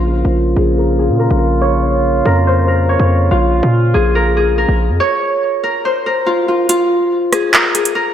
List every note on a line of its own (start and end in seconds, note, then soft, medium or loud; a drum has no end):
0.00 0.24 A#1 loud
0.00 4.96 C#3 medium
0.00 4.96 A#3 medium
0.00 2.45 F4 loud
0.00 3.28 F4 medium
0.00 0.78 A#4 medium
0.00 1.07 C5 medium
0.25 0.55 A#1 loud
0.56 1.11 A#1 loud
0.56 0.99 G#4 medium
0.78 1.19 A#4 medium
0.99 3.26 G#4 medium
1.09 1.29 A#2 loud
1.19 2.26 A#4 medium
1.31 2.22 A#1 loud
1.61 2.53 C#5 loud
2.26 2.97 F2 loud
2.26 2.67 A#4 medium
2.47 2.95 C5 medium
2.68 4.15 A#4 medium
2.89 4.80 C#5 medium
3.00 3.30 F2 loud
3.31 3.62 A#1 loud
3.31 5.83 F4 loud
3.31 4.99 F4 medium
3.63 3.93 A#2 loud
3.94 4.66 A#1 loud
3.94 4.36 G#4 medium
4.15 4.58 A#4 medium
4.37 6.64 G#4 medium
4.58 5.63 A#4 medium
4.68 4.91 A#1 loud
4.90 5.00 F2 loud
5.00 5.91 C#5 loud
5.63 6.06 A#4 medium
5.85 7.83 C5 medium
6.06 7.54 A#4 medium
6.26 6.48 F4 medium
6.48 6.69 F4 medium
6.69 8.14 F4 loud
6.69 closed hi-hat medium
7.32 7.74 G#4 medium
7.32 cross-stick medium
7.32 closed hi-hat medium
7.54 7.95 A#4 medium
7.54 clap loud
7.75 8.14 G#4 medium
7.75 closed hi-hat medium
7.85 closed hi-hat medium
7.95 8.14 A#4 loud